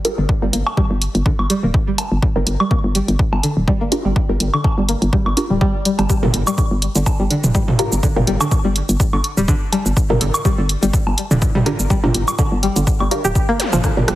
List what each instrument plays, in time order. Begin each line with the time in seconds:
0.05 synth stab D4 F4 G4 A#4, closed hi-hat
0.18 fm bass G1, synth pluck D3
0.29 kick
0.42 fm bass G1, synth pluck G3, synth stab D4 F4 G4 A#4
0.53 fm bass G1, synth pluck A#3, closed hi-hat
0.67 high woodblock, low woodblock
0.77 synth pluck G3, kick
0.91 fm bass G1
1.02 closed hi-hat
1.15 fm bass G1, closed hi-hat
1.26 synth pluck D3, kick
1.39 fm bass G1, low woodblock
1.50 synth pluck G3, closed hi-hat
1.63 fm bass D1, synth pluck A#3
1.74 kick
1.87 synth pluck G3
1.98 closed hi-hat, high woodblock
2.12 fm bass G1
2.22 kick
2.36 fm bass G1, synth pluck D3, synth stab D4 F4 G4 A#4
2.47 fm bass G1, closed hi-hat
2.60 synth pluck G3, low woodblock
2.71 synth pluck A#3, kick
2.84 fm bass G1
2.95 synth pluck G3, closed hi-hat
3.08 fm bass G1, closed hi-hat
3.19 kick
3.33 fm bass G1, high woodblock
3.43 synth pluck D3, closed hi-hat
3.57 fm bass D1
3.68 synth pluck G3, kick
3.81 synth pluck A#3
3.92 synth stab D4 F4 G4 A#4, closed hi-hat
4.05 fm bass G1, synth pluck G3
4.16 kick
4.29 fm bass G1, synth stab D4 F4 G4 A#4
4.40 fm bass G1, closed hi-hat
4.54 synth pluck D3, low woodblock
4.64 kick, high woodblock
4.78 fm bass G1, synth pluck G3
4.89 synth pluck A#3, closed hi-hat
5.02 fm bass G1, closed hi-hat
5.13 synth pluck G3, kick
5.26 fm bass G1, low woodblock
5.37 synth stab D4 F4 G4 A#4, closed hi-hat
5.50 fm bass D1, synth pluck G3
5.61 synth pluck G3, kick
5.85 synth pluck G3, closed hi-hat
5.99 fm bass G1, synth pluck G3, closed hi-hat, high woodblock
6.10 synth pluck G3, kick, shaker
6.23 fm bass G1, synth pluck D3, synth stab D4 F4 G4 A#4, mid tom
6.34 fm bass G1, closed hi-hat
6.47 synth pluck G3, low woodblock, shaker
6.58 kick, shaker
6.71 fm bass G1
6.82 closed hi-hat
6.95 fm bass G1, synth pluck D3, closed hi-hat, shaker
7.06 kick, high woodblock, shaker
7.20 fm bass G1, synth pluck G3
7.30 synth pluck D3, closed hi-hat
7.44 fm bass D1, mid tom, shaker
7.55 synth pluck G3, kick, shaker
7.68 mid tom
7.79 synth stab D4 F4 G4 A#4, closed hi-hat
7.92 fm bass G1, shaker
8.03 synth pluck D3, kick, shaker
8.16 fm bass G1, synth stab D4 F4 G4 A#4, mid tom
8.27 fm bass G1, synth pluck G3, closed hi-hat
8.41 synth pluck D3, high woodblock, low woodblock, shaker
8.51 kick, shaker
8.65 fm bass G1, synth pluck G3
8.76 closed hi-hat
8.89 fm bass G1, closed hi-hat, shaker
9.00 kick, shaker
9.13 fm bass G1, synth pluck D3, low woodblock
9.24 closed hi-hat
9.37 fm bass D1, synth pluck G3, shaker
9.48 synth pluck D3, kick, shaker
9.72 synth pluck G3, closed hi-hat, high woodblock
9.86 fm bass G1, shaker
9.97 kick, shaker
10.10 fm bass G1, synth stab D4 F4 G4 A#4, mid tom
10.21 fm bass G1, synth pluck D3, closed hi-hat
10.34 low woodblock, shaker
10.45 synth pluck G3, kick, shaker
10.58 fm bass G1, synth pluck D3
10.69 closed hi-hat
10.83 fm bass G1, synth pluck G3, closed hi-hat, shaker
10.93 kick, shaker
11.07 fm bass G1, high woodblock
11.18 closed hi-hat
11.31 fm bass D1, synth pluck D3, mid tom, shaker
11.42 kick, shaker
11.55 synth pluck G3, mid tom
11.66 synth pluck D3, synth stab D4 F4 G4 A#4, closed hi-hat
11.79 fm bass G1, shaker
11.90 synth pluck G3, kick, shaker
12.04 fm bass G1, synth stab D4 F4 G4 A#4, mid tom
12.14 fm bass G1, closed hi-hat
12.28 low woodblock, shaker
12.39 synth pluck D3, kick, high woodblock, shaker
12.52 fm bass G1
12.63 synth pluck G3, closed hi-hat
12.76 fm bass G1, synth pluck D3, closed hi-hat, shaker
12.87 kick, shaker
13.00 fm bass G1, synth pluck G3, low woodblock
13.11 synth stab D4 F4 G4 A#4, closed hi-hat
13.25 fm bass D1, synth pluck G4, shaker
13.35 kick, shaker
13.49 synth pluck A#3
13.60 closed hi-hat, zap
13.73 fm bass G1, synth pluck F3, mid tom, high woodblock, shaker
13.84 synth pluck D3, kick, cross-stick, shaker
13.97 fm bass G1, synth stab D4 F4 G4 A#4, mid tom
14.08 fm bass G1, synth pluck G3, cross-stick, closed hi-hat